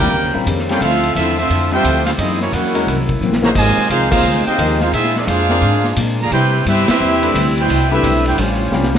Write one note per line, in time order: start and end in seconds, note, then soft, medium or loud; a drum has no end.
0.00 0.11 D2 medium
0.00 0.11 D3 medium
0.00 0.10 G3 medium
0.00 0.10 A#3 medium
0.00 0.43 A#3 medium
0.00 0.11 C4 medium
0.00 0.10 D4 medium
0.00 0.11 E4 loud
0.00 0.11 F4 medium
0.00 0.43 G4 medium
0.00 0.43 A#4 loud
0.00 0.11 A#4 medium
0.00 0.11 D5 loud
0.00 0.44 G5 loud
0.11 0.25 D#2 loud
0.11 0.80 C#3 medium
0.11 0.35 D#3 soft
0.11 0.80 G3 medium
0.11 2.16 C4 medium
0.11 0.36 C#4 soft
0.11 0.79 F4 medium
0.11 0.36 G4 medium
0.11 kick soft
0.15 0.37 C5 medium
0.24 0.35 C#2 medium
0.33 0.45 A#1 medium
0.33 0.45 G3 medium
0.33 0.45 C4 medium
0.33 0.45 F4 medium
0.33 0.46 A#4 medium
0.45 0.80 F2 loud
0.45 0.69 D#3 medium
0.45 0.70 C#4 medium
0.45 0.70 G4 medium
0.45 0.70 C5 medium
0.45 kick soft
0.45 hi-hat pedal medium
0.45 ride medium
0.58 snare soft
0.68 0.80 G3 medium
0.68 0.80 A#3 medium
0.68 0.80 C4 medium
0.68 0.80 C#4 medium
0.68 0.80 F4 medium
0.68 0.82 F4 medium
0.68 0.80 G4 medium
0.68 0.81 A4 medium
0.68 0.82 A#4 medium
0.68 0.82 C#5 medium
0.68 0.82 G5 loud
0.68 snare medium
0.68 ride medium
0.80 1.15 D2 medium
0.80 2.17 D3 medium
0.80 1.05 D3 medium
0.80 1.05 F3 medium
0.80 1.14 A3 loud
0.80 1.14 C4 medium
0.80 2.17 D4 medium
0.80 2.17 F4 medium
0.80 1.14 F4 medium
0.80 1.14 A4 medium
0.80 1.14 E5 medium
0.80 1.14 F5 loud
0.80 kick soft
0.80 ride medium
0.84 1.06 C4 medium
0.84 1.06 E4 medium
1.03 ride medium
1.15 1.49 E2 loud
1.15 1.38 D3 medium
1.15 1.39 F3 medium
1.15 1.37 A3 medium
1.15 1.39 C4 medium
1.15 1.37 C4 medium
1.15 1.37 C4 loud
1.15 1.39 E4 medium
1.15 1.37 E4 medium
1.15 1.37 F4 loud
1.15 1.37 A4 medium
1.15 1.36 E5 loud
1.15 kick soft
1.15 hi-hat pedal medium
1.15 ride medium
1.39 1.70 A3 medium
1.39 1.70 C4 medium
1.39 1.71 C4 medium
1.39 1.70 F4 medium
1.39 1.70 F4 loud
1.39 1.70 A4 medium
1.39 1.70 E5 loud
1.39 ride medium
1.50 1.83 F2 loud
1.50 1.73 D3 soft
1.50 1.74 F3 medium
1.50 1.74 C4 medium
1.50 kick soft
1.50 ride medium
1.54 1.75 E4 medium
1.71 1.83 G3 medium
1.71 2.04 A3 loud
1.71 1.83 C4 medium
1.71 2.04 C4 medium
1.71 1.83 F4 medium
1.71 2.05 F4 medium
1.71 2.04 G4 loud
1.71 1.83 A4 medium
1.71 2.05 C5 loud
1.71 2.05 E5 medium
1.71 2.05 G5 loud
1.82 2.17 D2 loud
1.82 2.07 D3 medium
1.82 2.07 F3 medium
1.82 2.08 C4 medium
1.82 2.08 E4 medium
1.82 kick soft
1.82 hi-hat pedal medium
1.82 ride medium
2.06 2.11 A3 medium
2.06 2.11 C4 medium
2.06 2.11 E4 medium
2.06 2.11 F4 medium
2.06 2.11 A4 medium
2.06 2.11 F5 medium
2.06 snare soft
2.06 ride medium
2.17 2.51 F#2 loud
2.17 2.42 F#2 medium
2.17 2.42 E3 medium
2.17 3.54 F#3 medium
2.17 3.54 A#3 medium
2.17 2.42 C4 medium
2.17 2.40 D#4 medium
2.17 3.54 E4 medium
2.17 2.40 E4 medium
2.17 2.41 G#4 medium
2.17 2.19 D5 medium
2.17 2.41 D#5 loud
2.17 kick soft
2.17 ride medium
2.21 2.43 A#3 medium
2.21 2.43 C4 medium
2.40 2.52 E3 medium
2.40 2.52 A#3 medium
2.40 2.52 C#4 medium
2.40 2.52 E4 medium
2.40 2.53 F#4 medium
2.40 2.53 C#5 medium
2.40 snare soft
2.53 2.86 E2 loud
2.53 2.76 F#2 medium
2.53 2.77 E3 medium
2.53 2.97 A#3 medium
2.53 2.77 A#3 medium
2.53 2.78 C4 medium
2.53 2.98 C#4 medium
2.53 2.97 E4 medium
2.53 2.98 F#4 medium
2.53 2.97 A#4 medium
2.53 2.98 C#5 medium
2.53 2.98 F#5 loud
2.53 kick soft
2.53 hi-hat pedal medium
2.53 ride medium
2.75 2.86 G#3 medium
2.75 2.86 C#4 medium
2.75 2.86 F#4 medium
2.75 2.86 A#4 medium
2.75 ride medium
2.87 3.20 C2 medium
2.87 3.11 F#2 soft
2.87 3.11 E3 soft
2.87 3.12 A#3 medium
2.87 3.12 C4 medium
2.87 kick soft
2.87 ride medium
3.09 kick medium
3.21 3.54 A#1 loud
3.21 3.45 F#2 medium
3.21 3.45 E3 medium
3.21 3.45 A#3 medium
3.21 3.46 C4 medium
3.21 hi-hat pedal medium
3.33 snare medium
3.42 3.50 C#3 medium
3.42 3.49 E3 medium
3.42 3.54 A#3 medium
3.42 3.49 A#3 medium
3.42 3.54 D#4 medium
3.42 3.50 F#4 medium
3.42 3.54 G#4 medium
3.42 3.55 C5 medium
3.42 3.49 C#5 medium
3.42 3.50 E5 medium
3.42 3.50 A#5 loud
3.42 snare loud
3.55 3.76 G#1 medium
3.55 3.79 F2 medium
3.55 3.89 C3 loud
3.55 3.80 D#3 medium
3.55 3.88 D#3 loud
3.55 4.92 F3 medium
3.55 6.28 G#3 medium
3.55 3.80 G#3 medium
3.55 3.89 G#3 medium
3.55 3.80 C4 medium
3.55 4.91 D#4 medium
3.55 3.89 F4 loud
3.55 3.88 C5 medium
3.55 3.88 D#5 loud
3.55 3.89 G#5 loud
3.55 kick medium
3.55 crash medium
3.77 muted upright bass stroke soft
3.90 4.23 C2 medium
3.90 4.13 F2 medium
3.90 4.14 D#3 medium
3.90 4.10 G#3 medium
3.90 4.14 G#3 medium
3.90 4.10 C4 medium
3.90 4.14 C4 medium
3.90 4.11 D#4 loud
3.90 4.10 F4 medium
3.90 4.11 G#4 loud
3.90 4.11 C5 loud
3.90 4.10 F5 loud
3.90 kick soft
3.90 hi-hat pedal medium
3.90 ride medium
4.11 4.44 G#3 medium
4.11 4.23 A#3 medium
4.11 4.44 C4 medium
4.11 4.23 D#4 medium
4.11 4.44 D#4 loud
4.11 4.44 F4 loud
4.11 4.23 G#4 medium
4.11 4.44 G#4 medium
4.11 4.44 C5 medium
4.11 4.23 C5 medium
4.11 4.44 F5 loud
4.11 kick loud
4.11 crash loud
4.22 4.45 D2 loud
4.22 4.47 F2 soft
4.22 4.48 D#3 soft
4.22 4.48 G#3 medium
4.22 4.49 C4 medium
4.46 4.78 C4 loud
4.46 4.78 D#4 medium
4.46 4.79 F4 medium
4.46 4.78 G4 medium
4.46 4.79 C5 medium
4.46 4.79 D#5 medium
4.46 4.79 G5 loud
4.46 muted upright bass stroke soft
4.58 4.92 D#2 loud
4.58 4.82 F2 medium
4.58 4.83 D#3 medium
4.58 4.83 G#3 medium
4.58 4.79 A#3 medium
4.58 4.83 C4 medium
4.58 4.79 D#4 medium
4.58 4.79 G#4 medium
4.58 4.79 D#5 medium
4.58 kick soft
4.58 hi-hat pedal medium
4.58 ride medium
4.80 4.93 G#3 medium
4.80 4.93 C4 medium
4.80 4.93 D#4 medium
4.80 4.93 F4 medium
4.80 4.93 G#4 medium
4.80 4.93 C5 medium
4.80 4.93 F5 medium
4.80 snare medium
4.91 5.16 A#2 soft
4.91 5.26 A#2 medium
4.91 5.16 G#3 medium
4.91 6.30 A#3 medium
4.91 5.17 C4 medium
4.91 5.15 C4 medium
4.91 6.29 D4 medium
4.91 5.17 D4 medium
4.91 5.14 E4 medium
4.91 5.14 F4 medium
4.91 5.15 G#4 medium
4.91 5.15 E5 loud
4.91 kick soft
4.91 ride medium
5.04 snare soft
5.16 5.29 F3 medium
5.16 5.28 G#3 medium
5.16 5.29 C4 medium
5.16 5.29 D4 medium
5.16 5.29 F4 medium
5.16 5.27 G#4 medium
5.16 5.29 D5 medium
5.16 snare medium
5.26 5.61 F2 loud
5.26 5.50 A#2 medium
5.26 5.51 G#3 medium
5.26 5.51 C4 medium
5.26 5.97 D4 loud
5.26 5.51 D4 medium
5.26 5.98 D4 medium
5.26 5.97 F4 medium
5.26 5.97 G#4 loud
5.26 5.97 C5 loud
5.26 5.97 F5 loud
5.26 kick soft
5.26 hi-hat pedal medium
5.26 ride medium
5.30 5.98 G#3 medium
5.49 5.61 C4 medium
5.49 5.61 F4 medium
5.49 5.62 A#4 medium
5.49 5.62 D5 medium
5.49 snare medium
5.62 5.95 G#2 loud
5.62 5.85 A#2 soft
5.62 5.85 G#3 soft
5.62 5.86 C4 medium
5.62 5.87 D4 medium
5.62 kick soft
5.62 ride medium
5.84 snare medium
5.96 6.20 A#2 medium
5.96 6.30 A#2 loud
5.96 6.20 G#3 medium
5.96 6.21 C4 medium
5.96 6.21 D4 medium
5.96 kick soft
5.96 hi-hat pedal medium
5.96 ride medium
6.18 6.30 D3 medium
6.18 6.30 F3 medium
6.18 6.30 A#3 medium
6.23 6.32 G#4 medium
6.23 6.32 D5 medium
6.23 6.33 F5 medium
6.23 6.32 A#5 loud
6.30 6.54 C3 medium
6.30 6.64 C3 medium
6.30 8.99 G3 medium
6.30 6.55 G3 medium
6.30 6.55 B3 medium
6.30 6.63 C4 medium
6.30 6.63 E4 loud
6.30 8.35 E4 loud
6.30 6.64 E4 medium
6.30 6.56 E4 medium
6.30 6.63 G4 medium
6.30 6.64 B4 medium
6.30 6.64 C5 medium
6.30 6.64 G5 loud
6.30 kick soft
6.30 ride medium
6.65 6.86 G2 loud
6.65 6.89 C3 medium
6.65 6.89 G3 medium
6.65 6.87 G3 medium
6.65 6.87 B3 medium
6.65 6.90 B3 medium
6.65 6.88 C4 loud
6.65 6.87 E4 medium
6.65 6.90 E4 medium
6.65 6.88 G4 loud
6.65 6.88 B4 loud
6.65 6.88 E5 loud
6.65 kick soft
6.65 hi-hat pedal medium
6.65 ride medium
6.88 7.53 G3 medium
6.88 7.53 C4 medium
6.88 7.54 C4 medium
6.88 7.54 E4 medium
6.88 7.54 G4 medium
6.88 7.54 B4 medium
6.88 7.54 E5 loud
6.88 muted upright bass stroke soft
6.88 snare loud
6.88 ride medium
7.00 7.33 E2 loud
7.00 7.24 C3 medium
7.00 7.24 G3 medium
7.00 7.25 B3 medium
7.00 7.25 E4 medium
7.22 7.33 A3 medium
7.22 7.33 D4 medium
7.22 7.33 G4 medium
7.22 7.34 B4 medium
7.22 ride medium
7.34 7.68 D2 loud
7.34 7.58 C3 medium
7.34 7.59 G3 medium
7.34 7.59 B3 medium
7.34 7.59 E4 medium
7.34 kick soft
7.34 hi-hat pedal medium
7.34 ride medium
7.57 7.89 B2 medium
7.57 7.89 E4 loud
7.57 7.90 E4 medium
7.57 7.90 G4 medium
7.57 7.90 B4 medium
7.57 7.91 C5 medium
7.57 7.90 G5 loud
7.57 ride medium
7.69 8.02 C2 loud
7.69 7.92 C3 medium
7.69 7.93 G3 medium
7.69 7.93 B3 medium
7.69 7.94 E4 medium
7.69 kick soft
7.69 ride medium
7.90 8.23 G3 medium
7.90 8.35 A3 medium
7.90 8.24 C4 medium
7.90 8.35 D4 medium
7.90 8.23 E4 medium
7.90 8.35 G4 medium
7.90 8.35 B4 loud
7.95 8.26 C4 medium
7.95 8.25 G4 medium
7.95 8.25 B4 medium
7.95 8.25 E5 loud
8.03 8.37 B1 loud
8.03 8.27 C3 medium
8.03 8.28 G3 medium
8.03 8.28 B3 medium
8.03 8.28 E4 medium
8.03 kick soft
8.03 hi-hat pedal medium
8.03 ride medium
8.25 8.38 B3 medium
8.25 8.37 E4 medium
8.25 8.39 E4 medium
8.25 8.37 G4 medium
8.25 8.39 B4 medium
8.25 8.38 C5 medium
8.25 8.39 G5 medium
8.25 ride medium
8.36 8.71 A1 loud
8.36 8.60 A2 soft
8.36 8.95 F3 medium
8.36 8.61 G3 medium
8.36 8.94 G3 medium
8.36 8.99 A3 medium
8.36 8.94 C#4 medium
8.36 8.99 C#4 medium
8.36 8.62 C#4 soft
8.36 8.99 F4 medium
8.36 8.62 F4 medium
8.36 kick soft
8.36 ride medium
8.40 8.96 G3 medium
8.40 8.96 C#4 medium
8.40 8.96 F4 medium
8.40 8.96 C5 medium
8.72 8.99 C2 medium
8.72 8.95 A2 medium
8.72 8.92 G3 medium
8.72 8.96 G3 medium
8.72 8.93 C4 medium
8.72 8.96 C#4 medium
8.72 8.96 F4 medium
8.72 8.93 F4 medium
8.72 8.93 G4 medium
8.72 snare medium
8.72 hi-hat pedal medium
8.83 snare medium
8.95 snare loud